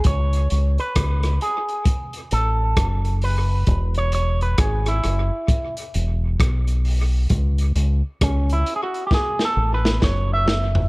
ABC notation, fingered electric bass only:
X:1
M:4/4
L:1/16
Q:"Swing 16ths" 1/4=66
K:E
V:1 name="Fingered electric bass" clef=bass
C,,2 C,, z C,,2 z4 A,,,2 F,,,4 | E,,,4 G,,,2 F,,, z3 E,,,2 B,,,4 | C,,2 C,, z C,,2 z4 A,,,2 F,,,4 |]